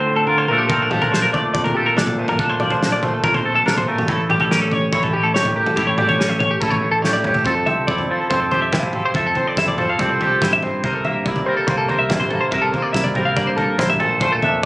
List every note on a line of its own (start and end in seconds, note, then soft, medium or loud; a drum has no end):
0.00 0.25 D2 medium
0.00 0.47 D3 medium
0.00 0.50 F3 medium
0.00 0.47 C4 medium
0.00 0.51 D4 medium
0.00 0.29 F4 medium
0.00 0.16 C5 medium
0.07 0.46 A2 medium
0.16 0.27 A4 medium
0.27 0.47 D3 medium
0.27 0.52 F4 medium
0.27 0.38 A#4 medium
0.38 0.48 C5 medium
0.48 1.29 A#1 medium
0.48 2.17 A#2 medium
0.48 0.92 F3 medium
0.48 1.35 A3 medium
0.48 0.71 D4 medium
0.48 0.59 A#4 medium
0.53 1.76 A4 medium
0.58 0.69 G4 medium
0.69 0.82 C4 medium
0.69 0.90 A#4 medium
0.69 kick loud
0.69 floor tom medium
0.82 1.96 D4 soft
0.90 2.16 F3 medium
0.90 1.01 G4 medium
0.90 mid tom medium
1.02 1.12 A#4 medium
1.02 floor tom medium
1.12 1.22 C5 medium
1.12 snare medium
1.22 1.33 A#4 medium
1.33 2.19 A3 medium
1.33 1.53 D5 medium
1.33 floor tom medium
1.54 1.95 A#1 medium
1.54 2.18 F2 medium
1.54 1.64 D5 medium
1.54 kick loud
1.64 1.75 A#4 medium
1.64 floor tom medium
1.75 1.86 G4 medium
1.75 2.22 A4 medium
1.86 1.97 A#4 medium
1.97 2.37 A#2 loud
1.97 2.16 D4 medium
1.97 2.18 D5 medium
1.97 snare medium
2.07 floor tom medium
2.07 mid tom medium
2.18 3.24 A#2 medium
2.18 3.03 A3 medium
2.18 2.29 C5 medium
2.28 2.39 A#4 medium
2.28 mid tom medium
2.39 3.20 A#1 loud
2.39 3.65 D4 medium
2.39 2.50 A4 medium
2.39 kick loud
2.39 floor tom medium
2.50 2.60 C5 medium
2.60 3.85 F3 medium
2.60 2.72 D5 medium
2.60 mid tom medium
2.70 2.92 C5 medium
2.70 floor tom medium
2.83 snare medium
2.92 3.03 D5 medium
3.03 3.88 A3 medium
3.03 3.14 C5 medium
3.03 floor tom medium
3.03 mid tom medium
3.14 3.24 A4 medium
3.24 3.64 A#1 medium
3.24 3.87 F2 medium
3.24 3.34 A#4 medium
3.24 kick loud
3.34 3.55 C5 medium
3.34 floor tom medium
3.46 3.90 A4 medium
3.56 3.66 A4 medium
3.66 4.06 A#1 loud
3.66 3.85 D4 medium
3.66 3.77 A#4 medium
3.66 snare medium
3.78 3.88 C5 medium
3.78 floor tom medium
3.78 mid tom medium
3.87 4.08 A#2 medium
3.87 4.32 A3 medium
3.87 3.99 A#4 medium
3.98 4.09 G4 medium
3.98 mid tom medium
4.08 4.89 A1 medium
4.08 5.14 A2 medium
4.08 4.94 E4 medium
4.08 4.30 A4 medium
4.08 kick loud
4.08 floor tom medium
4.29 5.34 G4 medium
4.29 4.40 G4 medium
4.29 mid tom medium
4.40 4.51 A4 medium
4.40 floor tom medium
4.51 5.75 C#4 medium
4.51 4.61 A#4 medium
4.51 snare medium
4.62 4.73 A4 medium
4.71 4.92 C#5 medium
4.71 floor tom medium
4.92 5.32 A1 medium
4.92 5.78 E4 medium
4.92 5.04 C#5 medium
4.92 kick loud
5.03 5.14 A4 medium
5.03 floor tom medium
5.13 5.75 A2 medium
5.13 5.24 G4 medium
5.23 5.34 A4 medium
5.34 5.75 A2 medium
5.34 5.55 G4 medium
5.34 5.56 C#5 medium
5.34 snare medium
5.45 floor tom medium
5.45 mid tom medium
5.56 5.75 G4 medium
5.56 5.66 A#4 medium
5.66 5.77 A4 medium
5.66 mid tom medium
5.76 6.58 A1 loud
5.76 6.81 A2 medium
5.76 6.62 E4 medium
5.76 5.87 G4 medium
5.76 kick loud
5.76 floor tom medium
5.87 5.97 C#5 medium
5.98 7.04 G4 medium
5.98 6.08 D5 medium
5.98 mid tom medium
6.09 6.29 C#5 medium
6.09 floor tom medium
6.20 7.44 C#4 medium
6.20 snare medium
6.29 6.39 E5 medium
6.40 6.51 C#5 medium
6.40 floor tom medium
6.40 mid tom medium
6.51 6.61 G4 medium
6.61 7.01 A1 medium
6.61 7.44 E4 medium
6.61 6.70 A4 medium
6.61 kick loud
6.70 6.91 C#5 medium
6.70 floor tom medium
6.83 7.44 A2 medium
6.92 7.02 A4 medium
7.02 7.44 A2 medium
7.02 7.26 G4 medium
7.02 7.13 C#5 medium
7.02 snare medium
7.13 7.24 D5 medium
7.24 7.45 G4 medium
7.24 7.35 C#5 medium
7.24 mid tom medium
7.34 7.44 A4 medium
7.34 floor tom medium
7.44 7.66 F2 medium
7.44 9.14 F2 medium
7.44 8.11 A4 medium
7.44 7.55 C5 medium
7.44 kick medium
7.44 floor tom medium
7.55 7.66 A4 medium
7.66 7.87 C2 medium
7.66 8.33 C4 medium
7.66 7.87 E5 medium
7.66 floor tom medium
7.87 8.08 F2 medium
7.87 8.73 E4 medium
7.87 8.10 D5 medium
7.87 kick loud
7.98 floor tom medium
8.10 9.13 F3 medium
8.10 8.53 A4 medium
8.10 8.20 C5 medium
8.20 8.30 A4 medium
8.30 8.74 F2 medium
8.30 8.95 C4 medium
8.30 8.40 C5 medium
8.30 kick loud
8.30 floor tom medium
8.40 8.51 A4 medium
8.51 9.14 G4 medium
8.51 8.62 C5 medium
8.51 floor tom medium
8.62 8.84 E5 medium
8.72 9.13 C3 medium
8.72 9.13 F3 medium
8.72 9.18 E4 medium
8.72 kick loud
8.72 snare medium
8.72 mid tom medium
8.83 8.94 C5 medium
8.83 floor tom medium
8.83 mid tom medium
8.93 9.36 C4 medium
8.93 9.05 A4 medium
8.93 mid tom medium
9.05 9.16 C5 medium
9.14 9.35 F2 medium
9.14 10.84 F2 medium
9.14 9.77 A4 medium
9.14 9.26 E5 medium
9.14 kick loud
9.14 floor tom medium
9.27 9.37 A4 medium
9.35 10.00 C4 medium
9.35 9.47 C5 medium
9.35 floor tom medium
9.47 9.58 D5 medium
9.57 9.97 F2 loud
9.57 10.43 E4 medium
9.57 9.68 E5 medium
9.57 kick loud
9.57 snare medium
9.68 9.79 D5 medium
9.68 floor tom medium
9.77 10.81 F3 medium
9.77 10.20 A4 medium
9.77 9.89 C5 medium
9.77 mid tom medium
9.90 10.00 F5 medium
9.99 10.39 C2 loud
9.99 10.64 C4 medium
9.99 10.10 D5 medium
9.99 kick loud
9.99 floor tom medium
10.10 10.21 C5 medium
10.21 10.82 G4 medium
10.21 10.42 A4 medium
10.21 floor tom medium
10.42 10.81 G2 medium
10.42 10.82 C3 medium
10.42 10.88 E4 medium
10.42 10.53 C5 medium
10.42 kick loud
10.42 snare medium
10.42 mid tom medium
10.53 10.63 E5 medium
10.53 floor tom medium
10.53 mid tom medium
10.63 10.88 C4 medium
10.63 10.83 C5 medium
10.63 mid tom medium
10.84 11.04 C2 medium
10.84 12.11 C3 medium
10.84 11.48 A#4 medium
10.84 10.94 C5 medium
10.84 kick medium
10.84 floor tom medium
10.94 11.05 A4 medium
11.05 11.25 G2 medium
11.05 11.70 A#3 medium
11.05 11.25 E5 medium
11.05 floor tom medium
11.25 11.46 C2 medium
11.25 12.11 E4 medium
11.25 11.47 D5 medium
11.25 kick loud
11.36 floor tom medium
11.46 12.50 G3 medium
11.46 11.90 A#4 medium
11.46 11.57 C5 medium
11.57 11.67 A4 medium
11.67 12.11 C2 medium
11.67 12.33 A#3 medium
11.67 11.77 C5 medium
11.67 kick loud
11.67 floor tom medium
11.78 11.88 A4 medium
11.88 12.53 A#4 medium
11.88 12.00 C5 medium
11.88 floor tom medium
11.99 12.19 E5 medium
12.10 12.51 G2 medium
12.10 12.50 C3 loud
12.10 12.51 E4 medium
12.10 kick loud
12.10 snare medium
12.10 mid tom medium
12.20 12.31 C5 medium
12.20 floor tom medium
12.20 mid tom medium
12.30 12.56 A#3 medium
12.30 12.42 A4 medium
12.30 mid tom medium
12.41 12.51 C5 medium
12.51 12.72 C2 medium
12.51 13.79 C3 medium
12.51 13.16 A#4 medium
12.51 12.62 E5 medium
12.51 kick loud
12.51 floor tom medium
12.62 12.72 A4 medium
12.72 13.36 A#3 medium
12.72 12.82 C5 medium
12.72 floor tom medium
12.82 12.94 D5 medium
12.93 13.34 C2 medium
12.93 13.78 E4 medium
12.93 13.05 E5 medium
12.93 kick loud
12.93 snare medium
13.04 13.15 D5 medium
13.04 floor tom medium
13.15 13.98 G3 medium
13.15 13.57 A#4 medium
13.15 13.26 C5 medium
13.15 mid tom medium
13.25 13.36 F5 medium
13.36 13.76 G2 medium
13.36 14.03 A#3 medium
13.36 13.47 D5 medium
13.36 kick loud
13.36 floor tom medium
13.47 13.56 C5 medium
13.56 13.78 A4 medium
13.56 13.99 A#4 medium
13.56 floor tom medium
13.78 13.99 C2 medium
13.78 13.97 G2 medium
13.78 13.98 E4 medium
13.78 13.89 C5 medium
13.78 kick loud
13.78 snare medium
13.78 mid tom medium
13.90 14.01 E5 medium
13.90 floor tom medium
13.90 mid tom medium
13.99 14.40 A#1 medium
13.99 14.65 A#2 medium
13.99 14.65 A4 medium
13.99 14.21 C5 medium
13.99 mid tom medium
14.20 14.65 A3 medium
14.20 14.32 C5 medium
14.20 kick loud
14.20 floor tom medium
14.32 14.43 A4 medium
14.42 14.62 F2 medium
14.42 14.65 D4 medium
14.42 14.63 E5 medium
14.42 floor tom medium